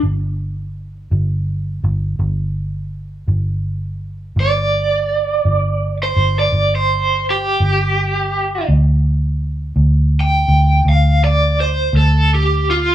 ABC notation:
X:1
M:12/8
L:1/16
Q:3/8=55
K:Gdor
V:1 name="Overdriven electric guitar"
z24 | d8- d c2 d2 c3 G8 | z8 g4 f2 d2 c2 A2 G2 F2 |]
V:2 name="Fingered electric bass" clef=bass
G,,,6 G,,,4 G,,,2 G,,,6 G,,,6 | G,,,6 G,,,4 G,,,2 G,,,6 G,,,6 | D,,6 D,,4 D,,2 D,,6 D,,6 |]